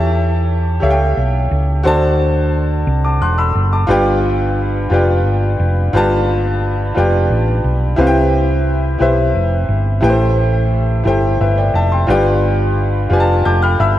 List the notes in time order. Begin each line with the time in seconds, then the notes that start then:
Already playing: E2 E3 G4 A4 C#5 E5 A5
0.80 C#2 G4 A4 C#5 E5
0.84 F5
0.91 G5
1.17 B1
1.51 C#2
1.83 D2 D3 F#4 A4 C5 D5 A5
2.87 C2
3.04 A5 D6
3.21 E1 C6 F#6
3.38 B5 E6
3.55 F#1
3.72 A5 D6
3.87 G1 G2 F4 G4 B4 D5 G5
4.90 F1 F4 G4 B4 D5 G5
5.25 G1
5.60 F1
5.93 G1 G2 F4 G4 B4 D5 A5
6.95 F1 F4 G4 B4 D5 G5
7.30 A1
7.64 B1
7.96 C2 C3 E4 G4 B4 C5
8.00 F5
8.07 G5
8.99 B1 E4 G4 B4 C5 E5
9.35 F1
9.69 G1
10.01 A1 A2 E4 G4 A4 B4 G5
10.10 C5
11.04 G1 E4 G4 A4 C5 G5
11.41 G1 B4 E5
11.58 D5 G5
11.74 F1 E5 A5
11.92 G5 C6
12.07 G1 G2 F4 G4 B4 D5 G5
13.10 F1 F4 G4 B4 D5 G#5
13.20 A5
13.45 F1 A5 D6 G6
13.62 G5 B5 F6
13.80 G1 E5 B5 E6